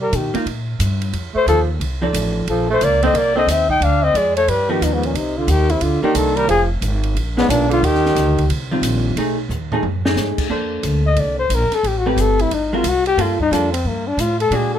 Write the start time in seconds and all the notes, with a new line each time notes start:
Already playing: C3
0.00 G3 A#4
0.12 B2 D#3 G4, hi-hat pedal, ride
0.34 A#3 D#4 F4, muted upright bass stroke, ride
0.46 A#2, ride
0.79 G2, hi-hat pedal, ride
1.02 ride
1.13 F2, ride
1.34 A3 C5, muted upright bass stroke
1.46 D#2 F3 A4, hi-hat pedal, ride
1.80 C2, ride
2.02 F3 D#4 A4 D5
2.13 A1, hi-hat pedal, ride
2.47 A#1 F3 A4, ride
2.70 A3 C5
2.81 C#2 A#3 D5, hi-hat pedal, ride
3.03 A#3 C4 D4 A4 C5 D#5, ride
3.13 C2 A#3, ride
3.18 D5
3.35 A#3 C4 D4 A4 C5 D#5
3.47 D#2 C4 E5, snare, hi-hat pedal, ride
3.69 D#4 G5, kick
3.80 D2 D4 F5, ride
4.03 C4 D#5
4.14 F2 G#3 D5, hi-hat pedal, ride
4.36 A3 C#5, ride
4.48 G2 G3 B4, ride
4.69 D#3 F3 B3 D#4 G4
4.81 D#2 B2 D#4, hi-hat pedal, ride
4.93 G#2 B3
5.03 A#2 C#4, ride
5.14 C2 C3 D#4, ride
5.38 D3 F4
5.47 D#2 D#3 G4, hi-hat pedal, ride
5.70 C3 E4, ride
5.81 D2 D3 F4, ride
6.03 D#3 A#3 D4 G4, muted upright bass stroke
6.15 C2 D#3 A4, hi-hat pedal, ride
6.36 G3 A#4, ride
6.48 F1 F3 G#4, ride
6.81 G#1, hi-hat pedal, ride
7.03 ride
7.15 A#1, ride
7.37 G#2 G#3 B3 D4, snare
7.49 B1 A#2 D4, hi-hat pedal, ride
7.69 D3 F4, ride
7.82 D#2 D#3 G4, ride
7.95 snare
8.06 snare
8.15 D2, snare, hi-hat pedal, ride
8.38 kick, ride
8.49 C2, ride
8.71 D#3 G3 C4 F4
8.81 A#1, hi-hat pedal, ride
9.16 B1 A3 D#4 G#4, ride
9.49 D#2, floor tom, hi-hat pedal
9.72 A3 D#4 G#4, floor tom
9.83 F#2, floor tom
10.05 A3 D#4 G#4, snare
10.16 G#2, snare, hi-hat pedal
10.38 muted upright bass stroke, kick, crash
10.50 F2 A#3 D4 A4 C5
10.83 D2, hi-hat pedal, ride
11.07 D#5
11.17 C2 D5, ride
11.39 C5
11.49 A#1, hi-hat pedal, ride
11.54 A#4
11.72 A4, snare, ride
11.83 A1 G4, ride
11.98 F#4
12.06 A3 C4 G4 B4
12.16 G1, hi-hat pedal, ride
12.21 A4
12.39 E4, ride
12.51 G#1 D#4, ride
12.73 G#3 C4 F4 F#4 A#4
12.84 C2, hi-hat pedal, ride
12.89 F#4
13.06 G4, ride
13.17 G2 G3 A#3 F4 A4, ride
13.40 D#4, kick
13.51 F2 G3 A#3 D4 F4 A4, hi-hat pedal, ride
13.72 C4, ride
13.85 G2 A#3
14.07 D4
14.17 A2 F4, hi-hat pedal, ride
14.40 A4, ride
14.50 A#2 G#3 D4 F#4, ride
14.55 G#4
14.74 A4